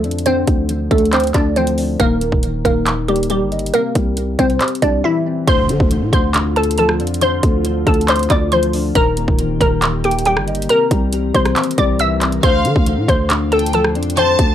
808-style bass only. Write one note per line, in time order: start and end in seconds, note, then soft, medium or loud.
0.04 0.45 F2 loud
0.48 0.89 D2 loud
0.91 1.33 D2 loud
1.35 1.97 D2 loud
2.00 2.31 D#1 loud
2.32 2.64 D#1 loud
2.65 3.43 D#1 loud
3.41 3.72 G1 loud
3.95 4.37 C2 loud
4.39 4.60 C2 loud
4.82 5.03 C2 loud
5.48 5.71 D2 loud
5.69 5.80 D3 loud
5.80 6.03 D2 loud
6.02 6.12 A2 loud
6.13 7.01 D2 loud
7.00 7.41 F2 loud
7.43 7.85 D2 loud
7.87 8.28 D2 loud
8.30 8.93 D2 loud
8.95 9.27 D#1 loud
9.28 9.59 D#1 loud
9.61 10.38 D#1 loud
10.37 10.68 G1 loud
10.91 11.33 C2 loud
11.35 11.55 C2 loud
11.78 12.41 C2 loud
12.43 12.66 D2 loud
12.65 12.75 D3 loud
12.76 12.99 D2 loud
12.98 13.08 A2 loud
13.08 13.97 D2 loud
13.95 14.37 F2 medium
14.39 14.55 D2 loud